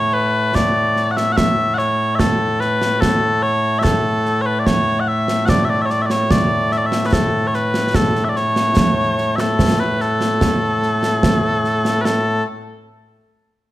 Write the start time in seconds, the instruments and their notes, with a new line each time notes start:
Already playing: bagpipes A2 A3 C#5
0.13 bagpipes B4
0.55 bagpipes D5, concert bass drum, snare
0.96 snare
1.11 bagpipes F#5
1.17 bagpipes E5, snare
1.32 bagpipes F#5
1.37 bagpipes E5, concert bass drum, snare
1.74 bagpipes C#5 F#5
1.79 snare
2.15 bagpipes E5
2.19 bagpipes A4, concert bass drum, snare
2.60 bagpipes B4, snare
2.82 snare
3.01 bagpipes A4, concert bass drum, snare
3.43 bagpipes C#5
3.79 bagpipes E5
3.83 bagpipes A4, concert bass drum, snare
4.26 snare
4.41 bagpipes C#5
4.46 bagpipes B4
4.59 bagpipes D5
4.66 bagpipes C#5, concert bass drum, snare
5.00 bagpipes F#5
5.08 bagpipes E5
5.28 snare
5.46 bagpipes D5 F#5, concert bass drum, snare
5.65 bagpipes E5
5.69 bagpipes D5
5.82 bagpipes E5
5.86 bagpipes C#5
5.90 bagpipes D5, snare
6.02 bagpipes E5
6.06 bagpipes D5
6.10 bagpipes C#5, snare
6.31 bagpipes D5, concert bass drum, snare
6.71 bagpipes E5, snare
6.77 bagpipes D5
6.86 bagpipes E5
6.92 snare
7.06 bagpipes B4
7.13 bagpipes A4, concert bass drum, snare
7.47 bagpipes C#5
7.54 bagpipes B4, snare
7.74 snare
7.94 bagpipes A4, concert bass drum, snare
8.15 snare
8.24 bagpipes E5
8.29 bagpipes D5
8.36 bagpipes C#5, snare
8.56 snare
8.77 concert bass drum, snare
9.18 snare
9.36 bagpipes E5, snare
9.40 bagpipes A4
9.59 concert bass drum, snare
9.80 bagpipes B4
10.00 bagpipes A4, snare
10.21 snare
10.41 concert bass drum, snare
10.83 snare
11.03 snare
11.23 concert bass drum, snare
11.64 snare
11.85 snare
12.01 bagpipes A4 B4, snare